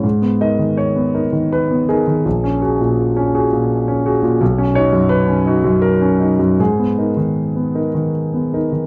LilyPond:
\new Staff \with { instrumentName = "Grand piano" } { \time 3/4 \key gis \minor \tempo 4 = 82 << { r8 dis''8 cis''4 b'8 gis'8~ | gis'2~ gis'8 r8 | r8 cis''8 b'4 ais'4 | gis'2 r4 | } \\ { gis,16 b16 <dis' ais'>16 dis8 b16 <dis' ais'>16 dis8 b16 <dis' ais'>16 dis16 | ais,,16 cis'16 <fis' gis'>16 ais,8 cis'16 <fis' gis'>16 ais,8 cis'16 <fis' gis'>16 ais,16 | b,,16 cis'16 <dis' fis'>16 fis,8 cis'16 <dis' fis'>16 fis,8 cis'16 <dis' fis'>16 fis,16 | gis,16 b16 <dis' ais'>16 dis8 b16 <dis' ais'>16 dis8 b16 <dis' ais'>16 dis16 | } >> }